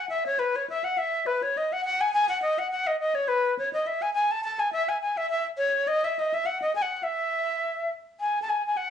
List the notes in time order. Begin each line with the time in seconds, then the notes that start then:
0.09 E5
0.27 C#5
0.39 B4
0.56 C#5
0.70 E5
0.84 F#5
0.98 E5
1.26 B4
1.42 C#5
1.57 D#5
1.73 F#5
1.85 F#5
2.01 G#5
2.13 G#5
2.29 F#5
2.42 D#5
2.59 F#5
2.71 F#5
2.87 D#5
3.00 D#5
3.15 C#5
3.28 B4
3.59 C#5
3.73 D#5
3.87 E5
4.02 G#5
4.14 G#5
4.31 A5
4.44 A5
4.59 G#5
4.73 E5
4.89 G#5
5.01 G#5
5.17 E5
5.30 E5
5.58 C#5
5.88 D#5
6.04 E5
6.19 D#5
6.34 E5
6.46 F#5
6.62 D#5
6.75 G#5
6.82 F#5
6.96 F#5
7.03 E5
8.20 G#5
8.42 A5
8.49 G#5
8.66 G#5
8.77 F#5